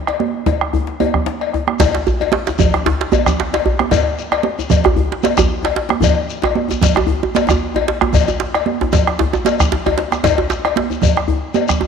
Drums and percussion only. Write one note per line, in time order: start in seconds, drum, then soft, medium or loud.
0.07 bombo rim medium
0.07 cowbell soft
0.07 djembe slap soft
0.19 bombo rim soft
0.19 high conga medium
0.34 djembe slap soft
0.46 bombo low loud
0.46 cowbell soft
0.46 djembe slap medium
0.46 djembe tone medium
0.46 low conga medium
0.61 bombo rim medium
0.73 bombo rim soft
0.73 djembe bass medium
0.87 djembe slap medium
1.00 cowbell soft
1.00 high conga medium
1.00 djembe tone medium
1.14 bombo rim medium
1.14 bombo low medium
1.14 djembe slap soft
1.14 low conga medium
1.26 bombo rim soft
1.26 djembe slap medium
1.41 bombo rim soft
1.41 cowbell soft
1.41 djembe slap soft
1.53 bombo rim soft
1.53 high conga soft
1.53 djembe tone medium
1.67 bombo rim medium
1.67 djembe slap soft
1.67 high conga medium
1.80 bombo low loud
1.80 cowbell medium
1.80 djembe slap loud
1.80 low conga medium
1.80 djembe bass medium
1.80 shekere medium
1.95 djembe slap medium
2.07 djembe bass medium
2.07 shekere soft
2.20 cowbell medium
2.20 djembe slap medium
2.20 high conga soft
2.32 bombo rim soft
2.32 djembe slap loud
2.32 high conga medium
2.47 djembe slap medium
2.47 shekere soft
2.49 djembe slap soft
2.49 djembe tone medium
2.59 bombo low loud
2.59 cowbell soft
2.59 low conga medium
2.59 djembe bass medium
2.59 shekere medium
2.74 bombo rim medium
2.74 djembe slap medium
2.86 djembe slap loud
2.86 djembe bass medium
3.01 djembe slap medium
3.12 bombo rim soft
3.12 cowbell medium
3.12 high conga medium
3.12 djembe bass medium
3.12 shekere soft
3.26 bombo rim medium
3.26 bombo low medium
3.26 djembe slap medium
3.26 low conga medium
3.26 shekere soft
3.39 djembe slap soft
3.39 djembe slap loud
3.53 cowbell medium
3.53 djembe slap medium
3.53 djembe tone medium
3.65 djembe slap soft
3.65 djembe bass medium
3.79 bombo rim medium
3.79 djembe slap medium
3.79 high conga medium
3.91 bombo low loud
3.91 cowbell medium
3.91 low conga medium
3.91 djembe bass medium
3.91 shekere medium
4.19 shekere soft
4.32 bombo rim medium
4.32 cowbell medium
4.32 djembe slap medium
4.32 high conga soft
4.43 bombo rim soft
4.43 djembe slap soft
4.43 high conga medium
4.59 djembe slap soft
4.59 djembe tone medium
4.59 shekere soft
4.70 bombo low loud
4.70 cowbell soft
4.70 low conga medium
4.70 shekere medium
4.84 bombo rim medium
4.84 djembe slap medium
4.84 djembe bass loud
4.96 djembe bass medium
5.12 djembe slap medium
5.22 bombo rim soft
5.22 cowbell medium
5.22 djembe slap soft
5.22 high conga medium
5.22 shekere soft
5.25 djembe slap medium
5.37 bombo rim medium
5.37 bombo low medium
5.37 djembe slap medium
5.37 low conga medium
5.37 djembe bass loud
5.37 shekere medium
5.49 djembe slap soft
5.63 cowbell medium
5.63 djembe slap medium
5.63 djembe tone medium
5.75 djembe slap soft
5.75 djembe slap medium
5.89 bombo rim medium
5.89 djembe slap medium
5.89 high conga medium
6.01 bombo low medium
6.01 cowbell medium
6.01 djembe bass medium
6.01 low conga medium
6.01 shekere medium
6.30 shekere soft
6.42 bombo rim medium
6.42 cowbell medium
6.42 djembe slap medium
6.42 djembe tone loud
6.42 high conga soft
6.54 bombo rim soft
6.54 djembe slap soft
6.54 high conga medium
6.68 djembe slap soft
6.68 djembe tone medium
6.68 shekere soft
6.71 djembe tone medium
6.81 bombo low loud
6.81 cowbell soft
6.81 djembe slap medium
6.81 low conga medium
6.81 shekere medium
6.95 bombo rim medium
6.95 djembe slap medium
6.95 djembe tone loud
7.07 djembe bass medium
7.23 djembe tone medium
7.33 bombo rim soft
7.33 cowbell medium
7.33 djembe slap soft
7.33 high conga medium
7.33 shekere soft
7.36 djembe slap medium
7.47 bombo rim medium
7.47 bombo low medium
7.47 djembe slap medium
7.47 djembe tone loud
7.47 low conga medium
7.47 shekere medium
7.60 djembe slap soft
7.74 cowbell medium
7.74 djembe tone medium
7.76 djembe tone medium
7.88 djembe slap medium
8.01 bombo rim medium
8.01 djembe slap medium
8.01 high conga medium
8.01 djembe tone loud
8.13 bombo rim soft
8.13 bombo low loud
8.13 cowbell medium
8.13 djembe slap soft
8.13 low conga medium
8.13 djembe bass medium
8.13 shekere medium
8.27 high conga soft
8.27 djembe tone medium
8.27 shekere soft
8.40 djembe slap medium
8.40 high conga soft
8.54 bombo rim medium
8.54 cowbell medium
8.54 djembe slap medium
8.66 high conga medium
8.81 djembe tone loud
8.81 djembe tone medium
8.93 bombo rim soft
8.93 bombo low loud
8.93 cowbell medium
8.93 djembe slap medium
8.93 low conga medium
8.93 shekere medium
9.07 bombo rim medium
9.07 djembe slap medium
9.07 high conga soft
9.19 bombo rim soft
9.19 djembe slap medium
9.19 high conga soft
9.19 djembe bass medium
9.33 djembe tone loud
9.33 shekere soft
9.45 cowbell medium
9.45 djembe slap medium
9.45 high conga medium
9.45 shekere soft
9.60 bombo rim medium
9.60 bombo low medium
9.60 low conga medium
9.60 djembe bass soft
9.60 shekere soft
9.71 djembe slap medium
9.71 high conga soft
9.71 djembe bass medium
9.86 bombo rim soft
9.86 cowbell medium
9.86 djembe tone loud
9.86 djembe bass medium
9.98 djembe slap medium
10.12 bombo rim medium
10.12 djembe slap medium
10.12 high conga medium
10.12 shekere soft
10.24 bombo low medium
10.24 cowbell medium
10.24 djembe slap medium
10.24 djembe bass medium
10.24 low conga medium
10.24 shekere medium
10.38 djembe tone loud
10.50 djembe slap medium
10.50 shekere soft
10.64 bombo rim medium
10.64 cowbell medium
10.64 djembe slap soft
10.64 high conga soft
10.76 bombo rim soft
10.76 djembe slap medium
10.76 high conga medium
10.90 djembe slap soft
10.90 djembe tone soft
10.90 shekere soft
11.02 bombo low loud
11.02 cowbell soft
11.02 low conga medium
11.02 shekere medium
11.17 bombo rim medium
11.17 djembe slap medium
11.28 djembe bass medium
11.54 bombo rim soft
11.54 cowbell soft
11.54 high conga medium
11.54 shekere soft
11.68 bombo rim medium
11.68 bombo low medium
11.68 djembe slap medium
11.68 low conga medium
11.68 shekere medium
11.80 djembe slap soft
11.80 djembe tone medium